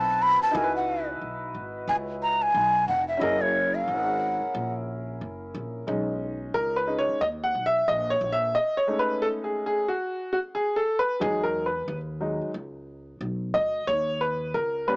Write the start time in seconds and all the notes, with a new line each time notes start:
Already playing: B1 C4 E4 F#4 B4 A5
0.22 B5
0.42 A5, muted upright bass stroke
0.51 C#2 D#4 E4
0.55 F#4 A#4 G#5
0.64 B4
0.77 F#5
1.21 B1
1.54 G#1
1.88 C#2 G#5
2.23 A#5
2.42 G#5
2.54 B1
2.88 F1 F#5
3.08 E5
3.17 F#1 C#4 E4 D#5
3.21 G#4 A#4
3.41 C#5
3.75 F5
3.87 G#1
3.92 F#5
4.42 muted upright bass stroke
4.55 A#1
5.21 F#1
5.54 A#1
5.87 B1 G#3 C#4 D#4
6.54 C#2 A#4
6.76 B4
6.87 G#3 C#4 D#4
6.99 C#5
7.08 muted upright bass stroke
7.21 D#2 D#5
7.44 F#5
7.55 B1
7.66 E5
7.88 A#1 D#5
8.10 C#5
8.21 A#1
8.32 E5
8.55 D#5
8.77 C#5
8.87 G#3 A3 C#4 D#4
8.99 B4
9.22 A4
9.44 G#4
9.66 G#4
9.88 F#4
10.33 F#4
10.55 G#4
10.76 A4
10.99 B4
11.20 E2 F#3 G#3 D#4 G#4
11.43 A#4
11.66 B4
11.88 D#2
12.21 F#3 G#3 D#4
12.41 muted upright bass stroke
12.54 C#2
13.21 B1
13.54 D2 D#5
13.87 D#2 C#5
14.21 B4
14.54 C#2 A#4
14.87 G3 A#3 C#4 B4